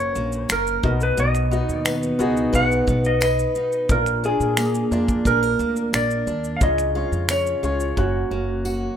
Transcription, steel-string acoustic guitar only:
0.00 0.83 F#2 medium
0.00 0.14 A#3 medium
0.00 0.90 C#4 medium
0.00 0.48 A#4 medium
0.15 0.90 A#3 medium
0.49 0.90 A#4 medium
0.83 1.16 B2 medium
1.17 3.89 B2 medium
1.51 2.18 D#4 medium
1.85 2.86 B3 medium
2.19 3.54 D#4 medium
2.53 3.20 B4 medium
2.87 3.96 B3 medium
3.21 3.96 B4 medium
3.56 3.96 D#4 soft
3.89 6.61 A#2 medium
4.24 4.91 D4 medium
4.57 5.58 A#3 medium
4.92 6.26 D4 medium
5.26 5.43 G#4 medium
5.43 5.92 A#4 medium
5.59 6.68 A#3 medium
5.93 6.68 A#4 medium
6.27 6.68 D4 medium
6.61 8.04 C#3 medium
6.95 7.62 F4 medium
7.30 8.31 C#4 medium
7.63 8.04 F4 medium
7.97 8.97 F#2 medium
8.31 8.97 A#3 medium
8.65 8.97 F#4 medium

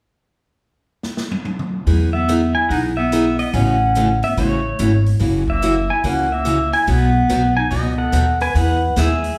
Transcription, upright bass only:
1.86 2.53 E2 medium
2.70 3.37 B1 medium
3.53 4.20 A1 loud
4.37 4.72 A1 medium
4.79 5.14 G#1 medium
5.20 5.87 F#1 medium
6.04 6.71 C#2 medium
6.88 7.21 B1 loud
7.29 7.64 B1 medium
7.71 8.06 C#2 medium
8.12 8.48 D#2 medium
8.55 8.88 E2 loud
8.96 9.32 D#2 medium

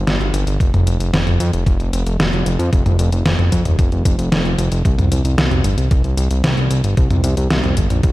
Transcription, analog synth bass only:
0.07 0.18 G1 loud
0.20 0.32 G1 medium
0.33 0.45 G1 medium
0.47 0.58 G1 medium
0.60 0.72 F1 loud
0.74 0.85 F1 medium
0.87 0.98 F1 loud
1.00 1.11 F1 medium
1.13 1.25 F1 loud
1.27 1.38 F1 medium
1.40 1.51 F2 loud
1.53 1.65 F1 medium
1.66 1.78 F1 loud
1.80 1.91 F1 medium
1.93 2.04 F1 medium
2.06 2.18 F1 medium
2.20 2.31 F1 loud
2.33 2.44 F1 medium
2.46 2.57 F1 loud
2.59 2.71 F2 medium
2.73 2.84 F1 loud
2.86 2.97 F1 medium
2.99 3.10 F1 medium
3.12 3.24 F1 medium
3.25 3.37 F1 loud
3.39 3.50 F1 medium
3.52 3.64 F2 loud
3.66 3.77 D#1 medium
3.79 3.90 F1 loud
3.92 4.03 F1 medium
4.05 4.17 F1 medium
4.18 4.30 F1 medium
4.32 4.43 F1 loud
4.45 4.56 F1 medium
4.58 4.70 F1 loud
4.72 4.83 F1 medium
4.85 4.96 C2 loud
4.98 5.09 C2 medium
5.11 5.23 C2 medium
5.25 5.36 C2 medium
5.38 5.49 C2 loud
5.51 5.62 C2 medium
5.64 5.76 G1 medium
5.78 5.89 C2 medium
5.91 6.02 C2 loud
6.04 6.16 C2 medium
6.17 6.29 C2 medium
6.31 6.42 C2 medium
6.44 6.55 C2 loud
6.57 6.69 C2 medium
6.71 6.82 C2 medium
6.84 6.95 G1 medium
6.97 7.09 C2 loud
7.10 7.22 C2 medium
7.24 7.35 C2 medium
7.37 7.48 C2 medium
7.50 7.62 C2 loud
7.64 7.75 C2 medium
7.77 7.88 G1 loud
7.90 8.02 A#1 medium
8.03 8.12 C2 loud

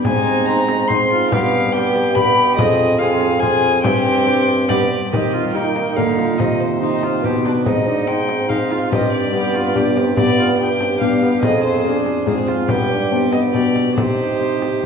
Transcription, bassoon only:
0.04 1.33 G#2 medium
1.32 2.60 G2 medium
2.58 3.84 F2 medium
3.84 4.68 G2 medium
4.69 4.90 G2 medium
5.12 5.99 D#3 medium
5.97 6.38 D3 medium
6.39 7.25 C3 medium
7.24 7.68 B2 medium
7.66 8.92 G#2 medium
8.92 9.33 G2 medium
9.34 11.40 G2 medium
11.43 11.98 F2 medium
12.28 12.71 G#2 medium
12.70 13.56 G2 medium
13.55 13.97 B2 medium
13.98 14.86 C3 medium

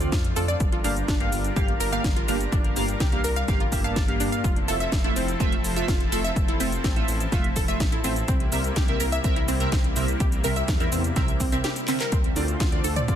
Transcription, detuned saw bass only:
0.12 0.31 F2 loud
0.36 0.55 F2 loud
0.60 0.79 G1 loud
0.84 1.03 G1 loud
1.08 1.27 G1 medium
1.32 1.51 G1 loud
1.56 1.75 G1 medium
1.80 1.99 G1 medium
2.04 2.23 G1 loud
2.28 2.47 G1 loud
2.52 2.71 G1 medium
2.76 2.95 G1 medium
3.00 3.19 C2 loud
3.24 3.43 C2 loud
3.48 3.67 G1 loud
3.72 3.91 G1 loud
3.96 4.15 G1 loud
4.20 4.30 G1 medium
4.44 4.63 F1 loud
4.68 4.87 F1 loud
4.92 5.11 F1 medium
5.16 5.35 F1 loud
5.40 5.59 F1 medium
5.64 5.83 F1 medium
5.88 6.07 F1 medium
6.12 6.31 F1 loud
6.36 6.55 F1 medium
6.60 6.79 F1 medium
6.84 7.03 A1 loud
7.08 7.27 A1 loud
7.32 7.51 F1 medium
7.56 7.75 F1 loud
7.80 7.99 A1 loud
8.04 8.23 A1 loud
8.28 8.47 C2 medium
8.52 8.71 C2 loud
8.76 8.95 C2 medium
9.00 9.19 C2 loud
9.24 9.43 C2 medium
9.48 9.67 C2 loud
9.72 9.91 C2 medium
9.96 10.15 C2 loud
10.20 10.39 C2 medium
10.44 10.63 C2 medium
10.68 10.87 E2 loud
10.92 11.11 E2 loud
11.16 11.35 C2 medium
11.40 11.59 C2 loud
12.12 12.31 D2 loud
12.36 12.55 D2 loud
12.60 12.79 D2 medium
12.84 13.03 D2 loud
13.08 13.15 D2 medium

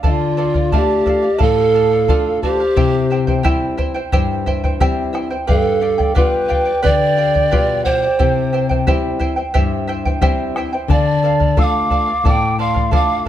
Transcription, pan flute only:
0.07 0.76 F4 medium
0.75 1.43 G4 medium
1.41 2.42 A4 loud
2.42 3.41 G4 loud
5.50 6.16 A4 medium
6.15 6.84 B4 loud
6.83 7.84 D5 loud
7.85 8.83 C5 loud
10.92 11.61 D5 loud
11.60 12.29 F5 medium
12.28 12.59 G5 loud
12.60 12.91 F5 medium
12.95 13.25 F5 loud

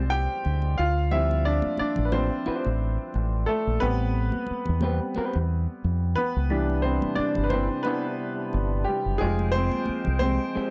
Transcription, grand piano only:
0.00 0.73 F3 medium
0.00 0.78 G3 soft
0.00 0.78 G#3 medium
0.00 0.79 C4 medium
0.00 0.79 F4 medium
0.00 0.79 G#4 medium
0.00 0.79 C5 medium
0.00 0.78 D5 medium
0.10 0.74 G4 medium
0.10 0.79 G5 loud
0.78 1.09 F4 medium
0.78 1.12 F5 medium
1.11 3.77 F3 medium
1.11 3.77 G3 soft
1.11 2.12 C4 soft
1.11 1.43 E4 medium
1.11 1.46 E5 loud
1.45 1.77 D4 medium
1.45 1.78 D5 medium
1.79 2.05 D4 medium
1.79 2.07 D5 medium
2.05 2.12 B4 medium
2.12 3.10 C4 medium
2.12 3.09 C5 medium
3.46 3.79 A3 medium
3.46 3.81 A4 medium
3.80 4.27 G3 soft
3.80 4.81 B3 medium
3.80 4.27 C4 medium
3.80 5.78 B4 loud
4.82 5.12 G3 soft
4.82 5.12 B3 soft
4.82 5.13 C4 soft
6.16 6.80 B3 medium
6.16 6.85 B4 medium
6.50 7.47 E3 medium
6.50 7.48 G3 soft
6.50 7.17 D4 medium
6.82 7.16 C4 medium
6.82 7.18 C5 medium
7.15 7.44 D4 medium
7.15 7.45 D5 medium
7.44 7.51 B4 medium
7.50 7.84 C4 medium
7.50 7.85 C5 medium
7.83 8.83 B3 medium
7.83 8.88 B4 medium
8.85 9.18 G3 medium
8.85 9.19 G4 medium
9.18 9.52 G#3 medium
9.18 9.67 F4 medium
9.18 9.66 G4 medium
9.18 9.54 G#4 medium
9.52 10.18 C4 medium
9.52 10.18 C5 loud
10.19 10.70 C4 medium
10.19 10.70 C5 medium

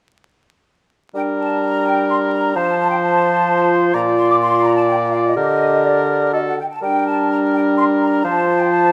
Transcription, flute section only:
1.15 1.21 G5 soft
1.39 1.62 A5 soft
1.62 1.85 A#5 medium
1.86 2.09 G5 soft
2.09 2.15 C6 medium
2.33 2.55 A#5 soft
2.56 2.78 A5 medium
2.79 2.90 A5 medium
2.90 2.95 G5 soft
3.02 3.70 A5 medium
3.93 3.99 A#5 medium
4.17 4.29 C6 medium
4.29 4.35 D6 medium
4.41 4.64 C6 medium
4.64 4.76 A#5 medium
4.76 4.82 A5 medium
4.88 4.94 G5 medium
5.12 5.18 F5 soft
5.25 5.36 D#5 soft
5.37 5.84 D#5 medium
5.86 6.34 D5 soft
6.34 6.40 D#5 soft
6.47 6.58 F#5 soft
6.59 6.64 G5 soft
6.71 6.83 A5 soft
6.82 7.06 G5 medium
7.07 7.30 A5 soft
7.30 7.36 A#5 soft
7.54 7.60 G5 soft
7.77 7.83 C6 medium
8.01 8.24 A#5 soft
8.24 8.46 A5 medium
8.47 8.59 A5 soft
8.59 8.71 G5 soft
8.70 8.92 A5 medium

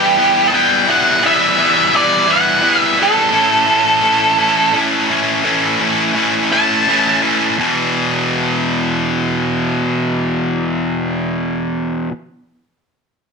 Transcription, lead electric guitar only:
0.00 0.48 G4 medium
0.48 0.54 A5 medium
0.54 0.90 G5 medium
0.90 1.22 F#5 medium
1.26 1.96 E5 medium
1.96 2.31 D5 medium
2.31 2.80 F#5 medium
2.80 2.96 E5 medium
3.03 4.73 A4 medium
6.52 7.19 A5 medium

